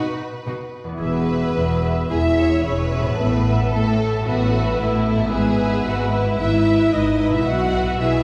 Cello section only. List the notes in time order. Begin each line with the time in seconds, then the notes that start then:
0.47 B2
1.01 E2
1.56 E2
2.11 E2
2.65 E2
3.19 A2
3.72 A2
4.25 A2
4.79 A2
5.32 G#2
5.86 G#2
6.40 G#2
6.94 G#2
7.47 B2
8.00 B2